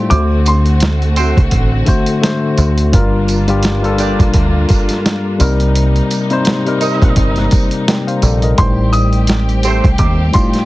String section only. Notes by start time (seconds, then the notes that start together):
Already playing: A3
0.11 D3 C4 F#4
2.94 G3 A#3 D4 F4
5.40 C3 A#3 D#4
8.58 A3 C4 G4